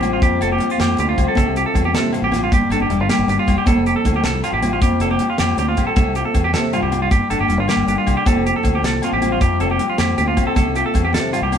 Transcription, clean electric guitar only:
Already playing: G4
0.13 F4
0.23 G4
0.42 A4
0.52 G4
0.71 F4
0.81 G4
1.00 G4
1.09 F4
1.28 A4
1.38 A4
1.57 G4
1.66 A4
1.85 G4
1.95 A4
2.14 muted clean electric guitar stroke
2.24 G4
2.44 F4
2.54 G4
2.72 A4
2.82 G4
3.01 F4
3.10 G4
3.29 G4
3.39 F4
3.58 G4
3.67 A4
3.87 G4
3.96 A4
4.16 G4
4.25 A4
4.44 F4
4.54 G4
4.73 F4
4.82 G4
5.01 A4
5.11 G4
5.30 F4
5.39 G4
5.59 G4
5.68 F4
5.87 A4
5.96 A4
6.16 G4
6.25 A4
6.44 G4
6.54 A4
6.73 F4
6.83 G4
7.02 F4
7.11 G4
7.30 A4
7.41 G4
7.60 F4
7.69 G4
7.89 G4
7.98 F4
8.17 G4
8.27 A4
8.46 G4
8.56 A4
8.75 G4
8.85 A4
9.04 F4
9.13 G4
9.32 F4
9.42 G4
9.61 A4
9.71 G4
9.89 F4
9.99 G4
10.18 G4
10.28 F4
10.47 A4
10.56 A4
10.76 G4
10.86 A4
11.05 G4
11.14 A4
11.33 F4
11.43 G4

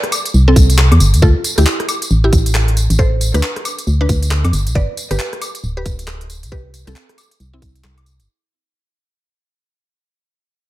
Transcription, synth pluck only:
0.48 C4 A4
1.22 F4 A4
1.58 E4 G4
2.24 E4 G4
2.99 A4 C5
3.34 D4 B4
4.01 D4 B4
4.75 B4 D5
5.11 G4 B4
5.77 G4 B4
6.52 G4 B4
6.87 C4 A4
7.53 C4 E4

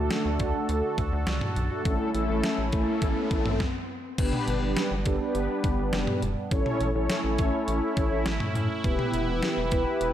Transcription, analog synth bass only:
0.25 D2
0.40 D2
0.69 D2
0.98 D2
1.13 D2
1.27 C#2
1.56 B1
1.85 A1
2.15 A1
2.29 A1
2.58 A1
2.73 A1
3.02 A1
3.31 A1
3.46 A1
4.18 G1
4.47 G1
4.62 G1
4.91 G1
5.06 G1
5.35 G1
5.64 G1
5.78 G1
5.93 F#1
6.22 E1
6.51 A1
6.81 A1
6.95 A1
7.24 A1
7.39 A1
7.68 A1
7.97 A1
8.12 A1
8.26 A1
8.55 A2
8.84 E1
9.14 E1
9.28 E1
9.57 E1
9.72 E1
10.01 E1

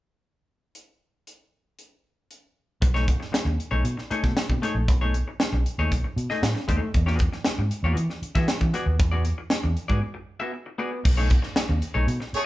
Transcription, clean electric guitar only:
2.82 muted clean electric guitar stroke
2.94 A3 D#4 G#4 C#5
3.07 muted clean electric guitar stroke
3.20 muted clean electric guitar stroke
3.32 muted clean electric guitar stroke
3.45 muted clean electric guitar stroke
3.71 A3 D#4 G#4 C#5
3.84 muted clean electric guitar stroke
3.97 muted clean electric guitar stroke
4.11 A3 D#4 G#4 C#5
4.24 muted clean electric guitar stroke
4.36 muted clean electric guitar stroke
4.50 muted clean electric guitar stroke
4.62 A3 D#4 G#4 C#5
4.76 muted clean electric guitar stroke
4.88 muted clean electric guitar stroke
5.01 A3 D#4 G#4 C#5
5.15 muted clean electric guitar stroke
5.28 muted clean electric guitar stroke
5.40 muted clean electric guitar stroke
5.53 muted clean electric guitar stroke
5.79 A3 D#4 G#4 C#5
5.92 muted clean electric guitar stroke
6.04 muted clean electric guitar stroke
6.30 A3 D#4 G#4 D#5
6.42 muted clean electric guitar stroke
6.55 muted clean electric guitar stroke
6.68 A3 D#4 G#4 C#5
6.81 muted clean electric guitar stroke
6.95 muted clean electric guitar stroke
7.06 B3 F#4 G#4 D5
7.20 muted clean electric guitar stroke
7.33 muted clean electric guitar stroke
7.46 muted clean electric guitar stroke
7.59 muted clean electric guitar stroke
7.84 B3 F#4 G#4 D5
7.97 muted clean electric guitar stroke
8.10 muted clean electric guitar stroke
8.35 B3 F#4 G#4 E5
8.49 muted clean electric guitar stroke
8.61 muted clean electric guitar stroke
8.74 B3 F#4 G#4 D5
8.86 muted clean electric guitar stroke
8.99 muted clean electric guitar stroke
9.12 B3 F#4 G#4 D5
9.25 muted clean electric guitar stroke
9.38 muted clean electric guitar stroke
9.51 muted clean electric guitar stroke
9.63 muted clean electric guitar stroke
9.88 B3 F#4 G#4 D5
10.01 muted clean electric guitar stroke
10.14 muted clean electric guitar stroke
10.40 B3 F#4 G#4 E5
10.53 muted clean electric guitar stroke
10.66 muted clean electric guitar stroke
10.78 B3 F#4 G#4 D5
10.92 muted clean electric guitar stroke
11.04 muted clean electric guitar stroke
11.17 A3 D#4 G#4 C#5
11.29 muted clean electric guitar stroke
11.42 muted clean electric guitar stroke
11.56 muted clean electric guitar stroke
11.69 muted clean electric guitar stroke
11.94 A3 D#4 G#4 C#5
12.07 muted clean electric guitar stroke
12.20 muted clean electric guitar stroke

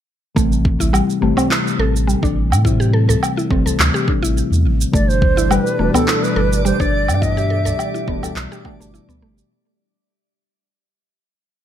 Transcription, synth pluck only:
0.36 A3
0.80 E4
0.93 G3
1.22 A3
1.37 C4
1.51 E4
1.79 A4
2.07 G3
2.23 D4
2.65 E4
2.80 G4
2.93 A4
3.09 A4
3.37 E4
3.51 C4
3.66 A4
3.94 G4
4.08 D4
4.23 E4
4.93 A3
5.37 E4
5.51 G3
5.79 A3
5.94 B3
6.08 E4
6.36 A4
6.65 G3
6.80 D4
7.22 E4
7.37 G4
7.50 A4
7.65 A4
7.94 E4
8.08 B3
8.23 A4
8.52 G4
8.65 A3
8.80 A3
8.94 E4
9.09 B3
9.22 A3

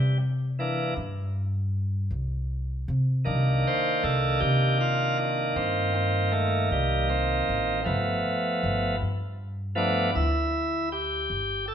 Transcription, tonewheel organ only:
Already playing: G3
0.59 E3 A#3 D4
3.25 D#3 A#3 D4
3.67 C5
4.04 A4
4.40 G4
4.81 F4
5.18 D4
5.56 C4
5.95 C4
6.32 A3
6.72 G3
7.10 C4
7.85 F3 A3 B3
9.75 F3 A3 B3 D4
10.15 E4
10.92 G4
11.68 A4

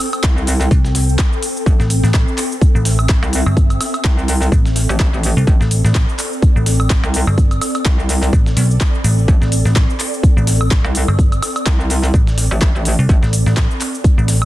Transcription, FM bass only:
0.71 C2
1.80 A1
2.04 A1
2.75 A1
3.46 G1
4.52 A1
5.37 C2
5.61 A1
5.85 A1
6.56 A1
7.27 G1
8.33 A1
8.57 B1
9.04 A1
9.42 A1
9.65 A1
10.37 A1
11.08 G1
12.14 A1
12.99 C2
13.23 A1
13.46 A1
14.18 A1

